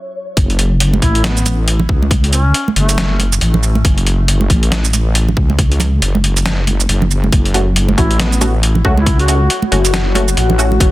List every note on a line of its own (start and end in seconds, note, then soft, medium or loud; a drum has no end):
0.00 0.33 F#4 medium
0.00 0.33 C#5 medium
0.00 0.38 C#5 medium
0.00 0.33 E5 medium
0.37 1.01 F#1 loud
0.37 kick loud
0.37 closed hi-hat medium
0.50 closed hi-hat soft
0.59 closed hi-hat medium
0.80 closed hi-hat medium
0.93 high conga loud
1.02 1.88 A1 medium
1.02 1.22 E4 medium
1.02 kick medium
1.02 closed hi-hat medium
1.15 closed hi-hat soft
1.24 1.58 B3 loud
1.24 snare loud
1.24 closed hi-hat medium
1.37 shaker medium
1.46 closed hi-hat medium
1.46 high conga medium
1.46 shaker medium
1.68 closed hi-hat medium
1.80 low conga medium
1.89 2.53 C#2 loud
1.89 kick loud
2.02 high conga loud
2.11 kick loud
2.11 closed hi-hat medium
2.24 closed hi-hat soft
2.33 2.67 C#4 loud
2.33 closed hi-hat medium
2.33 shaker medium
2.54 closed hi-hat medium
2.68 high conga loud
2.76 3.40 F#1 medium
2.76 3.20 A3 loud
2.76 closed hi-hat medium
2.89 closed hi-hat soft
2.89 shaker medium
2.98 snare loud
2.98 closed hi-hat medium
3.19 closed hi-hat medium
3.19 high conga medium
3.33 shaker medium
3.41 3.83 A1 loud
3.41 closed hi-hat medium
3.54 low conga medium
3.63 shaker medium
3.75 high conga loud
3.85 4.49 F#1 loud
3.85 kick loud
3.85 closed hi-hat medium
3.98 closed hi-hat soft
4.07 closed hi-hat medium
4.28 closed hi-hat medium
4.41 high conga medium
4.50 5.35 A1 medium
4.50 kick medium
4.50 closed hi-hat medium
4.63 closed hi-hat soft
4.72 snare loud
4.72 closed hi-hat medium
4.85 shaker medium
4.93 closed hi-hat medium
4.93 high conga medium
4.93 shaker medium
5.15 closed hi-hat medium
5.29 low conga medium
5.37 6.01 C#2 loud
5.37 kick loud
5.50 high conga loud
5.59 kick loud
5.59 closed hi-hat medium
5.72 closed hi-hat soft
5.80 closed hi-hat medium
5.80 low conga medium
5.80 shaker medium
6.02 6.88 F#1 medium
6.02 closed hi-hat medium
6.15 high conga loud
6.24 closed hi-hat medium
6.37 closed hi-hat soft
6.37 shaker medium
6.46 snare loud
6.46 closed hi-hat medium
6.67 closed hi-hat medium
6.67 high conga medium
6.80 shaker medium
6.89 7.31 F#1 loud
6.89 closed hi-hat medium
7.02 low conga medium
7.11 shaker soft
7.24 high conga medium
7.32 7.96 F#1 loud
7.32 10.91 F#4 medium
7.32 10.91 C#5 medium
7.32 10.91 F#5 medium
7.32 kick loud
7.32 closed hi-hat medium
7.45 closed hi-hat soft
7.54 7.66 A3 medium
7.54 7.66 C#4 medium
7.54 7.66 F#4 medium
7.54 closed hi-hat soft
7.76 closed hi-hat medium
7.89 high conga loud
7.98 8.83 A1 loud
7.98 8.15 A3 medium
7.98 8.15 C#4 medium
7.98 8.18 E4 loud
7.98 8.15 F#4 medium
7.98 kick medium
7.98 closed hi-hat medium
8.11 closed hi-hat soft
8.19 8.54 B3 loud
8.19 snare loud
8.19 closed hi-hat medium
8.32 shaker soft
8.41 8.53 A3 loud
8.41 8.53 C#4 medium
8.41 8.53 F#4 loud
8.41 closed hi-hat medium
8.41 high conga medium
8.41 shaker medium
8.63 closed hi-hat medium
8.75 low conga medium
8.85 9.49 C#2 loud
8.85 8.97 A3 loud
8.85 8.97 C#4 medium
8.85 8.97 F#4 loud
8.85 kick loud
8.97 9.17 E4 medium
8.97 high conga medium
9.06 kick loud
9.06 closed hi-hat medium
9.19 9.63 F#4 loud
9.19 closed hi-hat soft
9.28 9.40 A3 medium
9.28 9.40 C#4 medium
9.28 9.40 F#4 loud
9.28 closed hi-hat medium
9.28 shaker medium
9.50 closed hi-hat medium
9.62 high conga medium
9.72 10.36 F#1 loud
9.72 9.89 A3 medium
9.72 9.89 C#4 medium
9.72 9.89 F#4 medium
9.72 closed hi-hat soft
9.85 closed hi-hat soft
9.85 shaker medium
9.94 snare loud
9.94 closed hi-hat medium
10.15 10.27 A3 loud
10.15 10.27 C#4 medium
10.15 10.27 F#4 loud
10.15 closed hi-hat medium
10.15 high conga medium
10.28 shaker medium
10.37 10.79 A1 loud
10.37 closed hi-hat medium
10.50 low conga medium
10.59 10.70 A3 loud
10.59 10.71 C#4 medium
10.59 10.70 F#4 loud
10.59 shaker medium
10.72 high conga medium
10.80 10.91 F#1 loud
10.80 kick loud
10.80 closed hi-hat medium